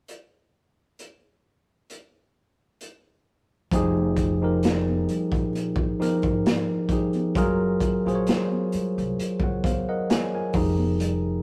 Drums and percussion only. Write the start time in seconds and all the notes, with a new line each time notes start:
0.08 closed hi-hat
0.99 closed hi-hat
1.90 closed hi-hat
2.81 closed hi-hat
3.71 kick, closed hi-hat, muted conga, low conga
3.97 muted conga
4.17 kick, closed hi-hat
4.63 snare, closed hi-hat
4.88 muted conga, high conga
5.09 closed hi-hat, low conga
5.32 kick, closed hi-hat
5.53 closed hi-hat, muted conga
5.76 kick, muted conga
6.01 closed hi-hat, high conga
6.22 kick, closed hi-hat
6.46 snare, closed hi-hat, muted conga, high conga
6.89 kick, closed hi-hat, low conga
7.13 closed hi-hat, high conga
7.35 kick, closed hi-hat, low conga
7.80 kick, closed hi-hat
8.08 closed hi-hat
8.27 snare, closed hi-hat
8.52 muted conga, high conga
8.72 closed hi-hat, low conga
8.98 closed hi-hat
9.20 closed hi-hat
9.40 kick, muted conga
9.64 kick, closed hi-hat, high conga
10.10 snare, closed hi-hat, high conga
10.53 kick, open hi-hat, low conga
10.78 high conga
10.99 closed hi-hat, muted conga, low conga